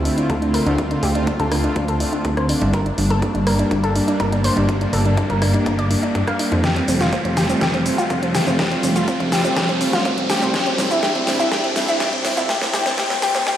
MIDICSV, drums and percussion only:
0, 0, Header, 1, 2, 480
1, 0, Start_track
1, 0, Tempo, 487805
1, 772, Time_signature, 4, 2, 24, 8
1, 13355, End_track
2, 0, Start_track
2, 0, Title_t, "Drums"
2, 52, Note_on_c, 9, 46, 100
2, 151, Note_off_c, 9, 46, 0
2, 175, Note_on_c, 9, 42, 40
2, 273, Note_off_c, 9, 42, 0
2, 292, Note_on_c, 9, 36, 117
2, 292, Note_on_c, 9, 42, 67
2, 390, Note_off_c, 9, 36, 0
2, 390, Note_off_c, 9, 42, 0
2, 415, Note_on_c, 9, 42, 39
2, 513, Note_off_c, 9, 42, 0
2, 532, Note_on_c, 9, 46, 87
2, 630, Note_off_c, 9, 46, 0
2, 655, Note_on_c, 9, 42, 40
2, 753, Note_off_c, 9, 42, 0
2, 772, Note_on_c, 9, 36, 116
2, 772, Note_on_c, 9, 42, 66
2, 870, Note_off_c, 9, 36, 0
2, 870, Note_off_c, 9, 42, 0
2, 894, Note_on_c, 9, 42, 39
2, 993, Note_off_c, 9, 42, 0
2, 1011, Note_on_c, 9, 46, 104
2, 1110, Note_off_c, 9, 46, 0
2, 1134, Note_on_c, 9, 42, 40
2, 1232, Note_off_c, 9, 42, 0
2, 1251, Note_on_c, 9, 42, 64
2, 1252, Note_on_c, 9, 36, 121
2, 1350, Note_off_c, 9, 36, 0
2, 1350, Note_off_c, 9, 42, 0
2, 1374, Note_on_c, 9, 36, 62
2, 1374, Note_on_c, 9, 42, 38
2, 1472, Note_off_c, 9, 42, 0
2, 1473, Note_off_c, 9, 36, 0
2, 1491, Note_on_c, 9, 37, 76
2, 1491, Note_on_c, 9, 46, 93
2, 1590, Note_off_c, 9, 37, 0
2, 1590, Note_off_c, 9, 46, 0
2, 1614, Note_on_c, 9, 42, 38
2, 1712, Note_off_c, 9, 42, 0
2, 1731, Note_on_c, 9, 42, 64
2, 1732, Note_on_c, 9, 36, 115
2, 1829, Note_off_c, 9, 42, 0
2, 1830, Note_off_c, 9, 36, 0
2, 1853, Note_on_c, 9, 42, 39
2, 1952, Note_off_c, 9, 42, 0
2, 1971, Note_on_c, 9, 46, 100
2, 2069, Note_off_c, 9, 46, 0
2, 2094, Note_on_c, 9, 42, 37
2, 2192, Note_off_c, 9, 42, 0
2, 2211, Note_on_c, 9, 42, 65
2, 2212, Note_on_c, 9, 36, 120
2, 2309, Note_off_c, 9, 42, 0
2, 2310, Note_off_c, 9, 36, 0
2, 2334, Note_on_c, 9, 37, 62
2, 2334, Note_on_c, 9, 42, 38
2, 2432, Note_off_c, 9, 37, 0
2, 2432, Note_off_c, 9, 42, 0
2, 2451, Note_on_c, 9, 46, 92
2, 2550, Note_off_c, 9, 46, 0
2, 2574, Note_on_c, 9, 42, 39
2, 2672, Note_off_c, 9, 42, 0
2, 2691, Note_on_c, 9, 42, 64
2, 2692, Note_on_c, 9, 36, 123
2, 2790, Note_off_c, 9, 36, 0
2, 2790, Note_off_c, 9, 42, 0
2, 2814, Note_on_c, 9, 42, 38
2, 2913, Note_off_c, 9, 42, 0
2, 2932, Note_on_c, 9, 46, 108
2, 3030, Note_off_c, 9, 46, 0
2, 3055, Note_on_c, 9, 42, 38
2, 3153, Note_off_c, 9, 42, 0
2, 3172, Note_on_c, 9, 36, 122
2, 3172, Note_on_c, 9, 42, 64
2, 3270, Note_off_c, 9, 36, 0
2, 3271, Note_off_c, 9, 42, 0
2, 3295, Note_on_c, 9, 42, 38
2, 3393, Note_off_c, 9, 42, 0
2, 3412, Note_on_c, 9, 37, 76
2, 3412, Note_on_c, 9, 46, 94
2, 3510, Note_off_c, 9, 37, 0
2, 3510, Note_off_c, 9, 46, 0
2, 3535, Note_on_c, 9, 42, 37
2, 3633, Note_off_c, 9, 42, 0
2, 3652, Note_on_c, 9, 36, 121
2, 3652, Note_on_c, 9, 42, 64
2, 3750, Note_off_c, 9, 36, 0
2, 3751, Note_off_c, 9, 42, 0
2, 3775, Note_on_c, 9, 42, 37
2, 3873, Note_off_c, 9, 42, 0
2, 3892, Note_on_c, 9, 46, 101
2, 3991, Note_off_c, 9, 46, 0
2, 4015, Note_on_c, 9, 42, 38
2, 4113, Note_off_c, 9, 42, 0
2, 4132, Note_on_c, 9, 36, 125
2, 4132, Note_on_c, 9, 42, 64
2, 4230, Note_off_c, 9, 36, 0
2, 4230, Note_off_c, 9, 42, 0
2, 4255, Note_on_c, 9, 42, 37
2, 4354, Note_off_c, 9, 42, 0
2, 4372, Note_on_c, 9, 46, 94
2, 4470, Note_off_c, 9, 46, 0
2, 4495, Note_on_c, 9, 42, 39
2, 4593, Note_off_c, 9, 42, 0
2, 4612, Note_on_c, 9, 36, 121
2, 4612, Note_on_c, 9, 42, 64
2, 4710, Note_off_c, 9, 36, 0
2, 4711, Note_off_c, 9, 42, 0
2, 4735, Note_on_c, 9, 42, 38
2, 4833, Note_off_c, 9, 42, 0
2, 4852, Note_on_c, 9, 46, 105
2, 4950, Note_off_c, 9, 46, 0
2, 4974, Note_on_c, 9, 42, 37
2, 5072, Note_off_c, 9, 42, 0
2, 5091, Note_on_c, 9, 42, 64
2, 5092, Note_on_c, 9, 36, 121
2, 5190, Note_off_c, 9, 36, 0
2, 5190, Note_off_c, 9, 42, 0
2, 5214, Note_on_c, 9, 36, 63
2, 5214, Note_on_c, 9, 42, 37
2, 5312, Note_off_c, 9, 42, 0
2, 5313, Note_off_c, 9, 36, 0
2, 5331, Note_on_c, 9, 37, 81
2, 5331, Note_on_c, 9, 46, 92
2, 5430, Note_off_c, 9, 37, 0
2, 5430, Note_off_c, 9, 46, 0
2, 5454, Note_on_c, 9, 42, 38
2, 5552, Note_off_c, 9, 42, 0
2, 5572, Note_on_c, 9, 36, 120
2, 5572, Note_on_c, 9, 42, 63
2, 5670, Note_off_c, 9, 36, 0
2, 5670, Note_off_c, 9, 42, 0
2, 5694, Note_on_c, 9, 42, 37
2, 5793, Note_off_c, 9, 42, 0
2, 5812, Note_on_c, 9, 46, 102
2, 5910, Note_off_c, 9, 46, 0
2, 5935, Note_on_c, 9, 42, 37
2, 6033, Note_off_c, 9, 42, 0
2, 6052, Note_on_c, 9, 36, 120
2, 6052, Note_on_c, 9, 42, 61
2, 6150, Note_off_c, 9, 36, 0
2, 6151, Note_off_c, 9, 42, 0
2, 6174, Note_on_c, 9, 37, 67
2, 6174, Note_on_c, 9, 42, 36
2, 6273, Note_off_c, 9, 37, 0
2, 6273, Note_off_c, 9, 42, 0
2, 6292, Note_on_c, 9, 46, 94
2, 6390, Note_off_c, 9, 46, 0
2, 6414, Note_on_c, 9, 42, 37
2, 6513, Note_off_c, 9, 42, 0
2, 6532, Note_on_c, 9, 36, 118
2, 6532, Note_on_c, 9, 38, 48
2, 6532, Note_on_c, 9, 42, 64
2, 6535, Note_on_c, 9, 82, 35
2, 6630, Note_off_c, 9, 36, 0
2, 6630, Note_off_c, 9, 38, 0
2, 6630, Note_off_c, 9, 42, 0
2, 6633, Note_off_c, 9, 82, 0
2, 6654, Note_on_c, 9, 42, 38
2, 6753, Note_off_c, 9, 42, 0
2, 6772, Note_on_c, 9, 46, 103
2, 6775, Note_on_c, 9, 82, 78
2, 6870, Note_off_c, 9, 46, 0
2, 6873, Note_off_c, 9, 82, 0
2, 6894, Note_on_c, 9, 38, 43
2, 6894, Note_on_c, 9, 42, 37
2, 6897, Note_on_c, 9, 82, 45
2, 6993, Note_off_c, 9, 38, 0
2, 6993, Note_off_c, 9, 42, 0
2, 6996, Note_off_c, 9, 82, 0
2, 7012, Note_on_c, 9, 36, 118
2, 7012, Note_on_c, 9, 42, 63
2, 7015, Note_on_c, 9, 82, 34
2, 7110, Note_off_c, 9, 36, 0
2, 7110, Note_off_c, 9, 42, 0
2, 7113, Note_off_c, 9, 82, 0
2, 7134, Note_on_c, 9, 42, 38
2, 7233, Note_off_c, 9, 42, 0
2, 7252, Note_on_c, 9, 38, 51
2, 7252, Note_on_c, 9, 46, 92
2, 7255, Note_on_c, 9, 82, 79
2, 7350, Note_off_c, 9, 38, 0
2, 7350, Note_off_c, 9, 46, 0
2, 7353, Note_off_c, 9, 82, 0
2, 7375, Note_on_c, 9, 42, 38
2, 7378, Note_on_c, 9, 82, 45
2, 7473, Note_off_c, 9, 42, 0
2, 7476, Note_off_c, 9, 82, 0
2, 7492, Note_on_c, 9, 36, 118
2, 7492, Note_on_c, 9, 38, 53
2, 7492, Note_on_c, 9, 42, 63
2, 7495, Note_on_c, 9, 82, 34
2, 7590, Note_off_c, 9, 36, 0
2, 7590, Note_off_c, 9, 38, 0
2, 7590, Note_off_c, 9, 42, 0
2, 7593, Note_off_c, 9, 82, 0
2, 7614, Note_on_c, 9, 42, 37
2, 7713, Note_off_c, 9, 42, 0
2, 7732, Note_on_c, 9, 46, 103
2, 7735, Note_on_c, 9, 82, 73
2, 7830, Note_off_c, 9, 46, 0
2, 7833, Note_off_c, 9, 82, 0
2, 7855, Note_on_c, 9, 42, 37
2, 7858, Note_on_c, 9, 82, 44
2, 7953, Note_off_c, 9, 42, 0
2, 7956, Note_off_c, 9, 82, 0
2, 7972, Note_on_c, 9, 36, 117
2, 7972, Note_on_c, 9, 42, 65
2, 7975, Note_on_c, 9, 82, 34
2, 8071, Note_off_c, 9, 36, 0
2, 8071, Note_off_c, 9, 42, 0
2, 8074, Note_off_c, 9, 82, 0
2, 8095, Note_on_c, 9, 42, 37
2, 8193, Note_off_c, 9, 42, 0
2, 8213, Note_on_c, 9, 38, 56
2, 8213, Note_on_c, 9, 46, 91
2, 8216, Note_on_c, 9, 82, 77
2, 8311, Note_off_c, 9, 38, 0
2, 8311, Note_off_c, 9, 46, 0
2, 8314, Note_off_c, 9, 82, 0
2, 8335, Note_on_c, 9, 42, 38
2, 8338, Note_on_c, 9, 82, 45
2, 8433, Note_off_c, 9, 42, 0
2, 8436, Note_off_c, 9, 82, 0
2, 8452, Note_on_c, 9, 36, 116
2, 8453, Note_on_c, 9, 38, 61
2, 8453, Note_on_c, 9, 42, 65
2, 8456, Note_on_c, 9, 82, 35
2, 8551, Note_off_c, 9, 36, 0
2, 8551, Note_off_c, 9, 38, 0
2, 8551, Note_off_c, 9, 42, 0
2, 8554, Note_off_c, 9, 82, 0
2, 8575, Note_on_c, 9, 42, 39
2, 8673, Note_off_c, 9, 42, 0
2, 8692, Note_on_c, 9, 46, 99
2, 8695, Note_on_c, 9, 82, 81
2, 8791, Note_off_c, 9, 46, 0
2, 8794, Note_off_c, 9, 82, 0
2, 8815, Note_on_c, 9, 42, 41
2, 8818, Note_on_c, 9, 82, 47
2, 8913, Note_off_c, 9, 42, 0
2, 8916, Note_off_c, 9, 82, 0
2, 8932, Note_on_c, 9, 36, 114
2, 8932, Note_on_c, 9, 42, 66
2, 8935, Note_on_c, 9, 82, 36
2, 9031, Note_off_c, 9, 36, 0
2, 9031, Note_off_c, 9, 42, 0
2, 9034, Note_off_c, 9, 82, 0
2, 9055, Note_on_c, 9, 36, 61
2, 9055, Note_on_c, 9, 42, 39
2, 9153, Note_off_c, 9, 36, 0
2, 9153, Note_off_c, 9, 42, 0
2, 9172, Note_on_c, 9, 38, 64
2, 9172, Note_on_c, 9, 46, 88
2, 9175, Note_on_c, 9, 82, 82
2, 9271, Note_off_c, 9, 38, 0
2, 9271, Note_off_c, 9, 46, 0
2, 9274, Note_off_c, 9, 82, 0
2, 9295, Note_on_c, 9, 42, 38
2, 9298, Note_on_c, 9, 82, 47
2, 9393, Note_off_c, 9, 42, 0
2, 9396, Note_off_c, 9, 82, 0
2, 9412, Note_on_c, 9, 36, 111
2, 9412, Note_on_c, 9, 38, 66
2, 9412, Note_on_c, 9, 42, 67
2, 9415, Note_on_c, 9, 82, 35
2, 9511, Note_off_c, 9, 36, 0
2, 9511, Note_off_c, 9, 38, 0
2, 9511, Note_off_c, 9, 42, 0
2, 9514, Note_off_c, 9, 82, 0
2, 9535, Note_on_c, 9, 42, 38
2, 9633, Note_off_c, 9, 42, 0
2, 9652, Note_on_c, 9, 46, 99
2, 9655, Note_on_c, 9, 82, 78
2, 9750, Note_off_c, 9, 46, 0
2, 9753, Note_off_c, 9, 82, 0
2, 9774, Note_on_c, 9, 38, 61
2, 9777, Note_on_c, 9, 82, 46
2, 9873, Note_off_c, 9, 38, 0
2, 9876, Note_off_c, 9, 82, 0
2, 9892, Note_on_c, 9, 36, 115
2, 9892, Note_on_c, 9, 42, 67
2, 9895, Note_on_c, 9, 82, 35
2, 9990, Note_off_c, 9, 42, 0
2, 9991, Note_off_c, 9, 36, 0
2, 9993, Note_off_c, 9, 82, 0
2, 10014, Note_on_c, 9, 42, 39
2, 10112, Note_off_c, 9, 42, 0
2, 10132, Note_on_c, 9, 38, 70
2, 10132, Note_on_c, 9, 46, 86
2, 10135, Note_on_c, 9, 82, 80
2, 10230, Note_off_c, 9, 38, 0
2, 10230, Note_off_c, 9, 46, 0
2, 10233, Note_off_c, 9, 82, 0
2, 10254, Note_on_c, 9, 42, 39
2, 10257, Note_on_c, 9, 82, 49
2, 10353, Note_off_c, 9, 42, 0
2, 10356, Note_off_c, 9, 82, 0
2, 10372, Note_on_c, 9, 36, 112
2, 10372, Note_on_c, 9, 38, 75
2, 10372, Note_on_c, 9, 42, 69
2, 10374, Note_on_c, 9, 82, 37
2, 10470, Note_off_c, 9, 36, 0
2, 10470, Note_off_c, 9, 38, 0
2, 10470, Note_off_c, 9, 42, 0
2, 10473, Note_off_c, 9, 82, 0
2, 10494, Note_on_c, 9, 42, 43
2, 10593, Note_off_c, 9, 42, 0
2, 10612, Note_on_c, 9, 38, 76
2, 10612, Note_on_c, 9, 46, 101
2, 10615, Note_on_c, 9, 82, 82
2, 10710, Note_off_c, 9, 38, 0
2, 10710, Note_off_c, 9, 46, 0
2, 10713, Note_off_c, 9, 82, 0
2, 10734, Note_on_c, 9, 42, 43
2, 10737, Note_on_c, 9, 82, 50
2, 10833, Note_off_c, 9, 42, 0
2, 10836, Note_off_c, 9, 82, 0
2, 10852, Note_on_c, 9, 36, 117
2, 10852, Note_on_c, 9, 38, 79
2, 10852, Note_on_c, 9, 42, 69
2, 10855, Note_on_c, 9, 82, 36
2, 10950, Note_off_c, 9, 36, 0
2, 10950, Note_off_c, 9, 38, 0
2, 10950, Note_off_c, 9, 42, 0
2, 10953, Note_off_c, 9, 82, 0
2, 10974, Note_on_c, 9, 42, 42
2, 11073, Note_off_c, 9, 42, 0
2, 11091, Note_on_c, 9, 38, 81
2, 11091, Note_on_c, 9, 46, 88
2, 11094, Note_on_c, 9, 82, 82
2, 11190, Note_off_c, 9, 38, 0
2, 11190, Note_off_c, 9, 46, 0
2, 11193, Note_off_c, 9, 82, 0
2, 11214, Note_on_c, 9, 42, 40
2, 11217, Note_on_c, 9, 82, 47
2, 11313, Note_off_c, 9, 42, 0
2, 11316, Note_off_c, 9, 82, 0
2, 11332, Note_on_c, 9, 36, 113
2, 11332, Note_on_c, 9, 38, 84
2, 11332, Note_on_c, 9, 42, 67
2, 11335, Note_on_c, 9, 82, 35
2, 11430, Note_off_c, 9, 36, 0
2, 11430, Note_off_c, 9, 38, 0
2, 11430, Note_off_c, 9, 42, 0
2, 11433, Note_off_c, 9, 82, 0
2, 11454, Note_on_c, 9, 42, 40
2, 11552, Note_off_c, 9, 42, 0
2, 11572, Note_on_c, 9, 38, 84
2, 11572, Note_on_c, 9, 46, 94
2, 11575, Note_on_c, 9, 82, 79
2, 11670, Note_off_c, 9, 38, 0
2, 11670, Note_off_c, 9, 46, 0
2, 11673, Note_off_c, 9, 82, 0
2, 11694, Note_on_c, 9, 42, 41
2, 11697, Note_on_c, 9, 82, 46
2, 11792, Note_off_c, 9, 42, 0
2, 11795, Note_off_c, 9, 82, 0
2, 11811, Note_on_c, 9, 38, 87
2, 11811, Note_on_c, 9, 42, 70
2, 11812, Note_on_c, 9, 36, 115
2, 11814, Note_on_c, 9, 82, 37
2, 11910, Note_off_c, 9, 36, 0
2, 11910, Note_off_c, 9, 38, 0
2, 11910, Note_off_c, 9, 42, 0
2, 11912, Note_off_c, 9, 82, 0
2, 11934, Note_on_c, 9, 42, 40
2, 12032, Note_off_c, 9, 42, 0
2, 12051, Note_on_c, 9, 38, 91
2, 12051, Note_on_c, 9, 46, 88
2, 12054, Note_on_c, 9, 82, 82
2, 12149, Note_off_c, 9, 38, 0
2, 12149, Note_off_c, 9, 46, 0
2, 12152, Note_off_c, 9, 82, 0
2, 12173, Note_on_c, 9, 42, 42
2, 12176, Note_on_c, 9, 82, 48
2, 12272, Note_off_c, 9, 42, 0
2, 12275, Note_off_c, 9, 82, 0
2, 12291, Note_on_c, 9, 38, 94
2, 12291, Note_on_c, 9, 42, 73
2, 12292, Note_on_c, 9, 36, 116
2, 12294, Note_on_c, 9, 82, 36
2, 12390, Note_off_c, 9, 36, 0
2, 12390, Note_off_c, 9, 38, 0
2, 12390, Note_off_c, 9, 42, 0
2, 12392, Note_off_c, 9, 82, 0
2, 12414, Note_on_c, 9, 38, 83
2, 12414, Note_on_c, 9, 42, 44
2, 12512, Note_off_c, 9, 38, 0
2, 12512, Note_off_c, 9, 42, 0
2, 12532, Note_on_c, 9, 38, 97
2, 12532, Note_on_c, 9, 46, 100
2, 12535, Note_on_c, 9, 82, 82
2, 12630, Note_off_c, 9, 38, 0
2, 12630, Note_off_c, 9, 46, 0
2, 12633, Note_off_c, 9, 82, 0
2, 12654, Note_on_c, 9, 38, 84
2, 12654, Note_on_c, 9, 42, 45
2, 12657, Note_on_c, 9, 82, 49
2, 12752, Note_off_c, 9, 38, 0
2, 12752, Note_off_c, 9, 42, 0
2, 12755, Note_off_c, 9, 82, 0
2, 12771, Note_on_c, 9, 38, 96
2, 12771, Note_on_c, 9, 42, 70
2, 12772, Note_on_c, 9, 36, 121
2, 12774, Note_on_c, 9, 82, 36
2, 12870, Note_off_c, 9, 36, 0
2, 12870, Note_off_c, 9, 38, 0
2, 12870, Note_off_c, 9, 42, 0
2, 12873, Note_off_c, 9, 82, 0
2, 12894, Note_on_c, 9, 36, 61
2, 12894, Note_on_c, 9, 38, 90
2, 12894, Note_on_c, 9, 42, 43
2, 12992, Note_off_c, 9, 36, 0
2, 12993, Note_off_c, 9, 38, 0
2, 12993, Note_off_c, 9, 42, 0
2, 13012, Note_on_c, 9, 38, 100
2, 13012, Note_on_c, 9, 46, 90
2, 13014, Note_on_c, 9, 82, 82
2, 13110, Note_off_c, 9, 38, 0
2, 13110, Note_off_c, 9, 46, 0
2, 13113, Note_off_c, 9, 82, 0
2, 13134, Note_on_c, 9, 38, 91
2, 13134, Note_on_c, 9, 42, 42
2, 13137, Note_on_c, 9, 82, 47
2, 13232, Note_off_c, 9, 38, 0
2, 13232, Note_off_c, 9, 42, 0
2, 13235, Note_off_c, 9, 82, 0
2, 13252, Note_on_c, 9, 36, 117
2, 13252, Note_on_c, 9, 38, 103
2, 13252, Note_on_c, 9, 42, 72
2, 13255, Note_on_c, 9, 82, 36
2, 13350, Note_off_c, 9, 36, 0
2, 13350, Note_off_c, 9, 38, 0
2, 13350, Note_off_c, 9, 42, 0
2, 13353, Note_off_c, 9, 82, 0
2, 13355, End_track
0, 0, End_of_file